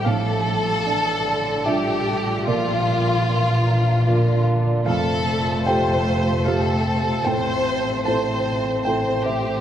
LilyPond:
<<
  \new Staff \with { instrumentName = "Felt piano" } { \time 3/4 \key d \minor \tempo 4 = 75 << { f''2 e''4 | d''2~ d''8 r8 | f''4 g''4 f''4 | g''4 a''4 g''8 e''8 | } \\ { a,4 <d' d'' f''>4 <d' f' d''>4 | bes,4 <bes d'' f''>4 <bes f' d''>4 | f,4 <a g' c''>4 <a g' c''>4 | a,4 <a e' c''>4 <a e' c''>4 | } >> }
  \new Staff \with { instrumentName = "Marimba" } { \time 3/4 \key d \minor d'16 a'16 a'16 r16 d'16 a'16 d''16 d''16 d'16 f'16 a'16 f'16 | bes'16 f''16 f''16 f''16 bes'16 f''16 bes''16 bes''16 bes'16 d''16 f''16 d''16 | f'16 c''16 c''16 c''16 f'16 c''16 f''16 f''16 f'16 a'16 c''16 a'16 | a'16 e''16 e''16 e''16 a'16 e''16 g''16 g''16 a'16 c''16 e''16 c''16 | }
  \new Staff \with { instrumentName = "Violin section" } { \time 3/4 \key d \minor a'2 g'4 | f'2~ f'8 r8 | a'4 c''4 a'4 | c''4 c''4 c''8 g'8 | }
  \new Staff \with { instrumentName = "Cello" } { \clef bass \time 3/4 \key d \minor f4 e8 d8 g4 | f4 e4 d4 | a2. | c'2. | }
  \new Staff \with { instrumentName = "Double bass" } { \clef bass \time 3/4 \key d \minor a,,2. | bes,,2. | f,,2. | a,,2. | }
>>